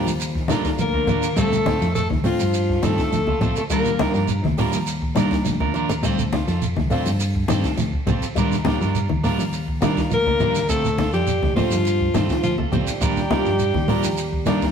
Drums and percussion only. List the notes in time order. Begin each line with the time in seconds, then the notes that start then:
0.07 shekere
0.20 ride bell, high conga, shekere
0.35 kick, snare
0.48 snare, ride bell, high conga, shekere
0.65 kick, snare, ride bell, shekere
0.79 ride bell, shekere
0.94 kick
1.07 ride bell, high conga, low conga, shekere
1.23 ride bell, shekere
1.36 kick, ride bell, high conga, low conga, shekere
1.53 shekere
1.66 kick, snare, ride bell, high conga, low conga
1.82 snare, ride bell, shekere
1.95 ride bell, high conga, shekere
2.10 kick, snare, high conga
2.24 open hi-hat, low conga, shekere
2.40 ride bell, shekere
2.54 ride bell, high conga, shekere
2.69 kick, snare
2.83 snare, ride bell, high conga, shekere
2.98 kick, snare, ride bell, shekere
3.12 snare, ride bell, shekere
3.27 kick, high conga
3.41 ride bell, high conga, low conga, shekere
3.56 ride bell, shekere
3.70 kick, snare, ride bell, high conga, shekere
3.85 shekere
3.99 kick, snare, ride bell, high conga
4.14 snare, shekere
4.28 ride bell, high conga, shekere
4.44 kick, snare, high conga
4.58 snare, open hi-hat, low conga, shekere
4.73 shekere
4.87 ride bell, high conga, shekere
5.02 kick
5.15 snare, ride bell, high conga, shekere
5.31 kick, snare, ride bell, shekere
5.45 snare, ride bell, shekere
5.60 kick, high conga
5.74 ride bell, shekere
5.89 ride bell, low conga, shekere
6.03 kick, snare, ride bell, high conga, low conga, shekere
6.19 shekere
6.32 kick, snare, ride bell, high conga
6.48 snare, ride bell, shekere
6.62 ride bell, high conga, shekere
6.76 kick, snare, high conga
6.90 open hi-hat, low conga, shekere
7.06 snare, ride bell, shekere
7.19 ride bell, high conga, shekere
7.35 kick
7.48 snare, ride bell, high conga, shekere
7.64 kick, snare, ride bell, shekere
7.77 snare, ride bell, shekere
7.93 kick
8.07 ride bell, high conga, low conga, shekere
8.22 ride bell, shekere
8.36 kick, ride bell, high conga, low conga, shekere
8.52 snare, shekere
8.65 kick, snare, ride bell, high conga, low conga
8.81 snare, shekere
8.95 ride bell, high conga, shekere
9.09 kick, high conga
9.24 snare, open hi-hat, low conga, shekere
9.40 shekere
9.53 ride bell, high conga, shekere
9.68 kick
9.82 snare, ride bell, high conga, shekere
9.97 kick, snare, ride bell, shekere
10.11 ride bell, shekere
10.26 kick, high conga
10.40 ride bell, high conga, low conga, shekere
10.55 snare, ride bell, shekere
10.69 kick, ride bell, high conga, shekere
10.85 shekere
10.98 kick, snare, ride bell, high conga
11.13 snare, ride bell, shekere
11.27 ride bell, high conga, shekere
11.42 kick, snare, high conga
11.56 open hi-hat, high conga, low conga, shekere
11.71 snare, ride bell, shekere
11.85 ride bell, high conga, shekere
12.01 kick
12.14 snare, ride bell, high conga, shekere
12.29 kick, snare, ride bell, shekere
12.44 snare, ride bell, shekere
12.58 kick, high conga
12.72 ride bell, high conga, low conga, shekere
12.87 snare, ride bell, shekere
13.01 kick, ride bell, high conga, low conga, shekere
13.17 snare, shekere
13.30 kick, snare, ride bell, high conga
13.45 snare, shekere
13.59 ride bell, high conga, shekere
13.74 kick, snare, high conga
13.88 open hi-hat, low conga, shekere
14.04 snare, shekere
14.17 ride bell, high conga, shekere
14.33 kick
14.46 snare, ride bell, high conga, shekere
14.62 kick, snare, ride bell, shekere